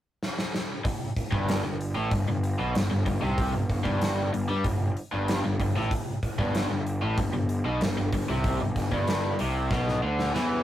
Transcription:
0.23 snare
0.39 snare
0.54 snare
0.85 muted overdriven electric guitar stroke, muted picked electric bass stroke, kick, open hi-hat
1.17 kick, open hi-hat
1.32 G1 G2, kick
1.49 snare, open hi-hat
1.64 G1 G2
1.81 open hi-hat
1.96 A1 A2
2.11 G1 G2, kick, open hi-hat
2.28 G1 G2
2.44 open hi-hat
2.59 B1 B2
2.75 G1 G2, snare, open hi-hat
2.91 G1 G2
3.06 G1 G2, kick, open hi-hat
3.22 C2 C3
3.38 kick, open hi-hat
3.53 G1 G2
3.70 kick, open hi-hat
3.85 G1 G2, kick
4.01 snare, open hi-hat
4.33 G1 G2, open hi-hat
4.49 G2 G3
4.64 G1 G2, kick, open hi-hat
4.97 open hi-hat
5.12 G1 G2
5.28 snare, open hi-hat
5.45 G1 G2
5.59 G1 G2, kick, open hi-hat
5.75 A1 A2
5.91 muted picked electric bass stroke, muted overdriven electric guitar stroke, kick, open hi-hat
6.23 kick, open hi-hat
6.39 G1 G2, kick
6.55 snare, open hi-hat
6.70 G1 G2
6.86 open hi-hat
7.02 A1 A2
7.18 G1 G2, kick, open hi-hat
7.34 G1 G2
7.49 open hi-hat
7.65 B1 B2
7.81 G1 G2, snare, open hi-hat
7.98 G1 G2
8.12 G1 G2, kick, open hi-hat
8.29 C2 C3
8.44 kick, open hi-hat
8.61 G1 G2
8.76 kick, snare, open hi-hat
8.92 G1 G2, kick
9.07 snare, open hi-hat
9.39 C2 C3, open hi-hat
9.71 B1 B2, kick, snare
9.88 snare
10.03 D2 D3
10.19 snare
10.35 E2 E3, snare

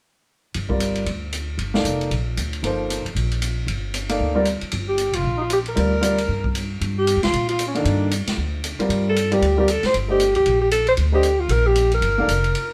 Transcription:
0.54 G1, ride
0.69 G3 C4 F4 A#4 D5, kick
0.80 hi-hat pedal, ride
0.95 ride
1.06 D2, ride
1.33 hi-hat pedal, ride
1.58 G1, ride
1.74 A#3 D#4 A4 D5 F5, snare
1.84 F1, hi-hat pedal, ride
2.01 ride
2.11 A#1, ride
2.37 D2, hi-hat pedal, ride
2.53 ride
2.63 G1 F3 A#3 D#4 A4 C5, ride
2.90 hi-hat pedal, ride
3.05 muted upright bass stroke, ride
3.15 A#1, ride
3.31 ride
3.42 hi-hat pedal, ride
3.67 G1, ride
3.94 hi-hat pedal, ride
4.09 A#3 D#4 A4 D5 F5, ride
4.20 D2
4.35 G3 C4 F4 A#4 D5
4.45 hi-hat pedal, ride
4.61 muted upright bass stroke, ride
4.71 G1, ride
4.88 G4
4.98 hi-hat pedal, ride
5.13 F1 F4, ride
5.24 A#1
5.37 D#4 F4
5.50 G4, hi-hat pedal, ride
5.66 A#4, ride
5.76 D2 G3 C4 F4 A#4 D5, ride
6.01 G3 C4 F4 A#4 D5, hi-hat pedal, ride
6.18 ride
6.28 G2
6.44 kick
6.55 hi-hat pedal, ride
6.81 G2, ride
6.98 G4
7.07 hi-hat pedal, ride
7.16 F2
7.23 D2 F4, snare, ride
7.33 A#2, ride
7.49 F4, ride
7.59 hi-hat pedal, ride
7.68 C#4
7.75 D#3 A#3 D4 A4 D5 F5, ride
7.85 G2, ride
8.11 hi-hat pedal, ride
8.27 muted upright bass stroke, snare, ride
8.37 D2
8.64 hi-hat pedal, ride
8.79 G3 C4 F4 A#4 D5, muted upright bass stroke, ride
8.89 G2, ride
9.09 A4
9.16 hi-hat pedal, ride
9.32 G3 C4 F4 G4 A#4 D5, ride
9.41 D2, ride
9.57 G3 C4 F4 G4 A#4 D5
9.68 A4, hi-hat pedal, ride
9.83 C5, muted upright bass stroke, snare, ride
9.94 G1, ride
10.08 A3 D4 G4 C5 D#5
10.20 hi-hat pedal, ride
10.35 D2 G4, ride
10.46 A#1, ride
10.61 G4
10.71 A4, hi-hat pedal, ride
10.87 C5, ride
10.97 D2, ride
11.12 A3 D4 G4 C5 D#5
11.23 hi-hat pedal, ride
11.40 F4
11.49 A#1 A#4, ride
11.67 G4
11.75 hi-hat pedal, ride
11.91 A#4, ride
12.01 G1, ride
12.18 A#3 D#4 A4 D5 F5
12.28 F1, hi-hat pedal, ride
12.44 ride
12.55 ride

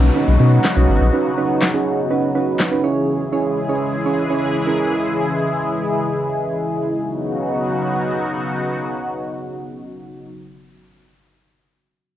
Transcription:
Already playing: B1 C#3 F#3 B3 D#4 F#4, downlifter
0.15 C#4 D#4 F#4 B4
0.28 B1
0.40 B2 C#4 D#4 F#4 B4
0.64 snare, clap
0.76 B1 C#4 D#4 F#4 B4
0.88 G#1
1.01 A#1
1.12 C#4 D#4 F#4 B4
1.37 C#4 D#4 F#4 B4
1.62 snare, clap
1.74 C#4 D#4 F#4 G#4
2.10 C#4 D#4 F#4 B4
2.35 C#4 D#4 F#4 B4
2.59 snare, clap
2.71 C#4 D#4 F#4 B4
2.83 E3 G#3 C#4 E4 G#4 C#5
3.32 C#4 E4 G#4 C#5
3.69 C#4 E4 G#4 C#5
4.05 C#4 E4 G#4 C#5
4.30 C#4 E4 G#4 C#5
4.66 C#4 E4 G#4 A#4
6.98 C#3 F#3 B3 D#4 F#4

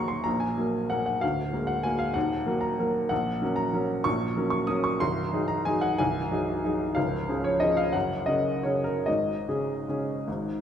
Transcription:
Already playing: D#1 D#2 F#3 A#3 A#4 A#5 C6 C#6
0.08 C6
0.24 A#1 A#2 A#5
0.40 G#5
0.57 F#3 A#3 A#4
0.90 F#3 A#3 A#4 F#5
1.06 F#5
1.21 D1 D2 F5
1.53 G#3 A#3 A#4
1.67 F#5
1.83 G#3 A#3 A#4 G#5
1.99 F5
2.14 D#1 D#2 F#5
2.46 F#3 A#3 A#4
2.61 A#5
2.79 F#3 A#3 A#4
3.09 A#1 A#2 F#5
3.42 F#3 C#4 A#4
3.56 A#5
3.73 F#3 C#4 A#4
4.04 A#1 A#2 C#6
4.36 F#3 C#4 A#4
4.50 C#6
4.67 F#3 C#4 A#4 D#6
4.84 C#6
5.00 C1 C2 C6
5.33 F#3 D#4 G#4
5.48 A#5
5.65 F#3 D#4 G#4 G#5
5.81 F#5
5.98 C1 C2 G#5
6.31 F#3 D#4 G#4
6.64 F#3 D#4 G#4
6.95 C#1 C#2 F5
7.28 F3 C#4 G#4
7.44 C#5
7.60 F3 C#4 G#4 D#5
7.77 F5
7.93 F#1 F#2 F#5
8.26 C#3 C#4 A#4 D#5
8.63 C#3 C#4 A#4 C#5
8.84 A#4
9.06 G#1 G#2 D#5
9.48 C#3 C#4 G#4
9.88 C#3 C#4 G#4
10.28 G#1 G#2

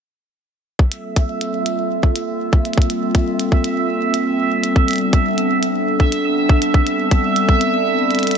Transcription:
0.79 G3 A#3 C4 F4 A4 E5, kick
0.92 closed hi-hat
1.16 kick, closed hi-hat
1.41 closed hi-hat
1.66 closed hi-hat
2.03 kick
2.16 closed hi-hat
2.53 kick
2.65 closed hi-hat
2.73 closed hi-hat
2.78 kick
2.82 closed hi-hat
2.90 closed hi-hat
3.15 kick, closed hi-hat
3.40 closed hi-hat
3.52 kick
3.64 closed hi-hat
4.14 closed hi-hat
4.51 B3 D4
4.64 closed hi-hat
4.76 kick
4.88 closed hi-hat
4.91 closed hi-hat
4.93 closed hi-hat
4.96 closed hi-hat
4.98 closed hi-hat
5.13 kick, closed hi-hat
5.38 closed hi-hat
5.63 closed hi-hat
6.00 kick
6.12 closed hi-hat
6.49 kick
6.62 closed hi-hat
6.74 kick
6.87 closed hi-hat
7.11 kick, closed hi-hat
7.36 closed hi-hat
7.49 kick
7.61 closed hi-hat
8.11 closed hi-hat
8.15 closed hi-hat
8.19 closed hi-hat
8.23 closed hi-hat
8.27 closed hi-hat
8.31 closed hi-hat

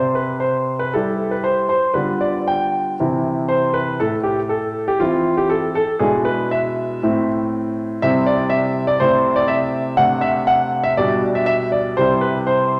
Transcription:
Already playing: C3 C5
0.15 B4
0.40 C5
0.79 B4
0.94 G3 E4 G4 A4
1.31 B4
1.44 C5
1.69 C5
1.94 D3 G3 B3 F4 B4
2.21 D5
2.48 G5
3.00 C3 E3 C4 E4
3.48 C5
3.74 B4
4.00 A2 A4
4.23 G4
4.49 A4
4.88 G4
5.00 E3 C4 E4 F4
5.37 G4
5.50 A4
5.75 A4
5.99 B2 G#3 D4 E4 G#4
6.25 B4
6.51 E5
7.03 A2 A3 C4 E4
8.02 C3 G3 C4 E4 E5
8.26 D5
8.50 E5
8.87 D5
9.00 C3 A3 C4 E4 C5
9.36 D5
9.48 E5
9.97 C3 A3 D4 F#5
10.21 E5
10.47 F#5
10.84 E5
10.97 B2 G3 D4 G4 D5
11.35 E5
11.46 E5
11.72 D5
11.97 C3 G3 E4 G4 C5
12.21 B4
12.47 C5

